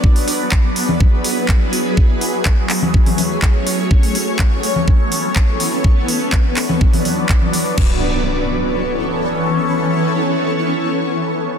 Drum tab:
CC |----------------|----------------|----------------|----------------|
HH |-oo---o---o---o-|--o---o--oo---o-|-oo---o---o---o-|--o---o--oo---o-|
CP |----x-------x---|----x-x-----x---|----x-------x---|----x-x-----x---|
CG |-------o--------|-------o-oo-----|-------o--------|-------o-oo--o--|
BD |o---o---o---o---|o---o---o---o---|o---o---o---o---|o---o---o---o---|

CC |x---------------|----------------|
HH |----------------|----------------|
CP |----------------|----------------|
CG |----------------|----------------|
BD |o---------------|----------------|